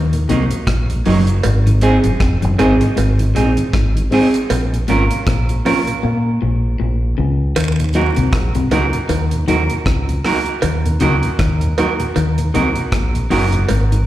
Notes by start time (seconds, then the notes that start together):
Already playing: D#2 D#3
0.13 D#2 A#2, closed hi-hat
0.29 C2 C3 F#3 A#3 D#4, closed hi-hat
0.51 D#2 A#2, closed hi-hat
0.67 A#1 A#2, kick, cross-stick, closed hi-hat
0.90 D#2 A#2, closed hi-hat
1.06 F#1 F#2 F#3 A#3 D#4, open hi-hat
1.27 closed hi-hat
1.43 G#1 G#2, closed hi-hat, cowbell
1.66 G#2 D#3, closed hi-hat
1.81 G#3 C4 D#4 G#4, closed hi-hat
2.04 F#1 F#2 G#2 D#3, closed hi-hat
2.20 F1 F2, kick, cross-stick, closed hi-hat
2.42 F#1 F#2 G#2 D#3, closed hi-hat
2.58 G#1 G#2 G#3 C4 D#4 G#4, closed hi-hat, cowbell
2.81 G#2 D#3, muted clean electric guitar stroke, closed hi-hat
2.97 G#1 G#2, closed hi-hat, cowbell
3.19 G#2 D#3, closed hi-hat
3.35 A#1 A#2 G#3 C4 D#4 G#4, closed hi-hat
3.57 G#2 D#3, closed hi-hat
3.73 G#1 G#2, kick, cross-stick, closed hi-hat
3.96 G#2 D#3, closed hi-hat
4.11 G#3 C4 D#4 G#4, open hi-hat
4.34 muted clean electric guitar stroke, closed hi-hat
4.50 A#1 A#2, closed hi-hat, cowbell
4.73 A#2, closed hi-hat
4.88 G#1 G#2 F3 A#3 C#4 F4 A#4, closed hi-hat
5.11 A#2, closed hi-hat
5.27 A#1 A#2, kick, cross-stick, closed hi-hat
5.49 A#2, closed hi-hat
5.65 F3 A#3 C#4 F4 A#4, open hi-hat, cowbell
5.87 A#2, muted clean electric guitar stroke, closed hi-hat
6.03 A#2 A#3
6.42 A#1 A#2
6.80 A#1 A#2
7.18 C#2 C#3
7.56 D#2 D#3, closed hi-hat, cowbell, vibraslap
7.79 D#2 A#2, closed hi-hat
7.94 F#3 A#3 D#4 F#4 A#4, closed hi-hat
8.16 C2 D#2 A#2 C3, closed hi-hat
8.33 A#1 A#2, kick, cross-stick, closed hi-hat
8.55 C2 D#2 A#2 C3, closed hi-hat
8.71 C#2 C#3 F#3 A#3 D#4 F#4 A#4, closed hi-hat, cowbell
8.93 D#2 A#2, muted clean electric guitar stroke, closed hi-hat
9.09 D#2 D#3, closed hi-hat, cowbell
9.31 D#2 A#2, closed hi-hat
9.48 D#2 D#3 F#3 A#3 D#4 F#4 A#4, closed hi-hat
9.70 D#2 A#2, closed hi-hat
9.86 C#2 C#3, kick, cross-stick, closed hi-hat
10.09 D#2 A#2, closed hi-hat
10.24 F#3 A#3 D#4 F#4 A#4, cross-stick, open hi-hat
10.46 muted clean electric guitar stroke, closed hi-hat
10.62 D#2 D#3, closed hi-hat, cowbell
10.85 D#2 A#2, closed hi-hat
11.00 C#2 C#3 F#3 A#3 D#4 F#4 A#4, closed hi-hat
11.23 D#2 A#2, closed hi-hat
11.39 D#2 D#3, kick, cross-stick, closed hi-hat
11.61 D#2 A#2, closed hi-hat
11.78 F#3 A#3 D#4 F#4 A#4, closed hi-hat, cowbell
12.00 D#2 A#2, muted clean electric guitar stroke, closed hi-hat
12.16 D#2 D#3, closed hi-hat, cowbell
12.38 D#2 A#2, closed hi-hat
12.54 C2 C3 F#3 A#3 D#4 F#4 A#4, closed hi-hat
12.76 D#2 A#2, closed hi-hat
12.92 A#1 A#2, kick, cross-stick, closed hi-hat
13.15 D#2 A#2, closed hi-hat
13.30 F#1 F#2 F#3 A#3 D#4 F#4 A#4, open hi-hat
13.52 D#2 A#2, closed hi-hat
13.69 G#1 G#2, closed hi-hat, cowbell
13.92 G#2 D#3, closed hi-hat